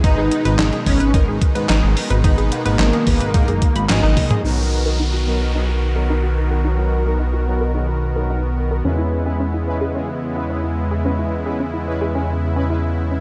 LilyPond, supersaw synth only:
\new Staff \with { instrumentName = "Supersaw synth" } { \clef bass \time 4/4 \key ces \major \tempo 4 = 109 << { <ces ees ees'>1~ | <ces ees ees'>1 | <dis fis' ais'>1~ | <dis fis' ais'>1 |
<cis gis e'>1~ | <cis gis e'>1 | } \\ { aes1~ | aes1 | b1~ | b1~ |
b1~ | b1 | } >> }